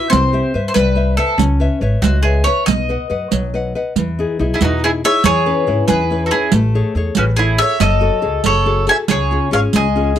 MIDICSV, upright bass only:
0, 0, Header, 1, 2, 480
1, 0, Start_track
1, 0, Tempo, 427655
1, 125, Time_signature, 6, 3, 24, 8
1, 11437, End_track
2, 0, Start_track
2, 0, Title_t, "Upright bass"
2, 0, Program_c, 0, 32
2, 141, Note_on_c, 0, 36, 103
2, 447, Note_off_c, 0, 36, 0
2, 614, Note_on_c, 0, 43, 75
2, 766, Note_off_c, 0, 43, 0
2, 850, Note_on_c, 0, 36, 85
2, 1314, Note_off_c, 0, 36, 0
2, 1548, Note_on_c, 0, 37, 117
2, 1864, Note_off_c, 0, 37, 0
2, 2029, Note_on_c, 0, 32, 89
2, 2189, Note_off_c, 0, 32, 0
2, 2267, Note_on_c, 0, 37, 100
2, 2739, Note_off_c, 0, 37, 0
2, 2998, Note_on_c, 0, 35, 100
2, 3312, Note_off_c, 0, 35, 0
2, 3483, Note_on_c, 0, 42, 70
2, 3639, Note_off_c, 0, 42, 0
2, 3723, Note_on_c, 0, 35, 78
2, 4193, Note_off_c, 0, 35, 0
2, 4441, Note_on_c, 0, 40, 91
2, 4757, Note_off_c, 0, 40, 0
2, 4931, Note_on_c, 0, 35, 85
2, 5086, Note_off_c, 0, 35, 0
2, 5175, Note_on_c, 0, 40, 83
2, 5641, Note_off_c, 0, 40, 0
2, 5879, Note_on_c, 0, 40, 107
2, 6193, Note_off_c, 0, 40, 0
2, 6369, Note_on_c, 0, 32, 84
2, 6523, Note_off_c, 0, 32, 0
2, 6617, Note_on_c, 0, 40, 89
2, 7079, Note_off_c, 0, 40, 0
2, 7318, Note_on_c, 0, 33, 112
2, 7631, Note_off_c, 0, 33, 0
2, 7799, Note_on_c, 0, 40, 88
2, 7955, Note_off_c, 0, 40, 0
2, 8045, Note_on_c, 0, 33, 93
2, 8511, Note_off_c, 0, 33, 0
2, 8758, Note_on_c, 0, 30, 102
2, 9071, Note_off_c, 0, 30, 0
2, 9242, Note_on_c, 0, 37, 85
2, 9398, Note_off_c, 0, 37, 0
2, 9477, Note_on_c, 0, 30, 90
2, 9949, Note_off_c, 0, 30, 0
2, 10196, Note_on_c, 0, 37, 97
2, 10512, Note_off_c, 0, 37, 0
2, 10687, Note_on_c, 0, 32, 78
2, 10843, Note_off_c, 0, 32, 0
2, 10926, Note_on_c, 0, 37, 90
2, 11395, Note_off_c, 0, 37, 0
2, 11437, End_track
0, 0, End_of_file